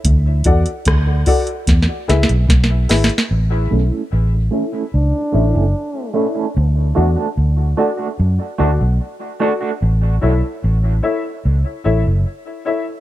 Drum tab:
HH |x-----x--x--x-----o--x--x-----x--x--x-----o--x--|------------------------------------------------|------------------------------------------------|------------------------------------------------|
SD |------------r-----------o-o---o-o---o-o---o-o-o-|------------------------------------------------|------------------------------------------------|------------------------------------------------|
BD |o-----o-----o-----o-----o-----------o-----------|------------------------------------------------|------------------------------------------------|------------------------------------------------|